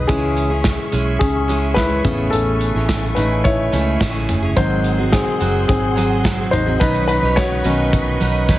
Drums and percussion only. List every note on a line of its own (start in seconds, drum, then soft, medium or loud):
0.09 kick loud
0.09 closed hi-hat medium
0.37 closed hi-hat medium
0.64 kick loud
0.64 snare loud
0.64 closed hi-hat medium
0.64 tambourine medium
0.92 closed hi-hat medium
1.21 kick loud
1.21 closed hi-hat medium
1.49 closed hi-hat medium
1.76 kick medium
1.76 snare loud
1.76 closed hi-hat medium
1.76 tambourine medium
2.05 kick medium
2.05 closed hi-hat medium
2.05 floor tom medium
2.33 closed hi-hat medium
2.61 closed hi-hat medium
2.88 kick loud
2.88 snare loud
2.88 closed hi-hat medium
2.88 tambourine medium
3.17 closed hi-hat medium
3.45 kick loud
3.45 closed hi-hat medium
3.73 closed hi-hat medium
4.00 kick medium
4.00 snare medium
4.00 closed hi-hat medium
4.00 tambourine medium
4.15 closed hi-hat soft
4.29 closed hi-hat medium
4.29 floor tom medium
4.57 kick loud
4.57 closed hi-hat loud
4.84 closed hi-hat medium
5.12 kick loud
5.12 snare loud
5.12 closed hi-hat medium
5.12 tambourine medium
5.41 closed hi-hat medium
5.69 kick loud
5.69 closed hi-hat medium
5.98 closed hi-hat medium
6.25 kick medium
6.25 snare medium
6.25 closed hi-hat medium
6.25 tambourine medium
6.53 closed hi-hat medium
6.53 floor tom medium
6.81 kick loud
6.81 closed hi-hat medium
6.94 closed hi-hat soft
7.09 closed hi-hat medium
7.37 kick loud
7.37 snare loud
7.37 closed hi-hat medium
7.37 tambourine medium
7.65 closed hi-hat medium
7.93 kick loud
7.93 closed hi-hat medium
8.21 closed hi-hat medium
8.49 kick medium
8.49 snare soft
8.49 tambourine loud